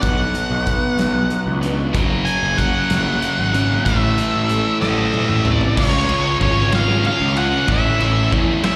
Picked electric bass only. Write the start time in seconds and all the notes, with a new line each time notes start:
0.03 B1
0.50 B1
0.99 B1
1.47 C#2
1.95 F#1
2.43 F#1
2.91 F#1
3.39 G#1
3.86 A1
4.35 A1
4.82 A1
5.29 A1
5.77 C#2
6.09 C#2
6.41 G#1
7.21 C#2
7.69 A1
8.01 A1
8.33 E2